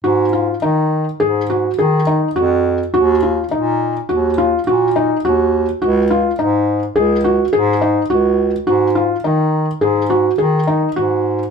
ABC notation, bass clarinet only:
X:1
M:5/4
L:1/8
Q:1/4=105
K:D#m
V:1 name="Bass clarinet" clef=bass
G,,2 D,2 G,,2 D,2 E,,2 | D,,2 A,,2 D,,2 A,,2 D,,2 | C,,2 G,,2 C,,2 G,,2 C,,2 | G,,2 D,2 G,,2 D,2 G,,2 |]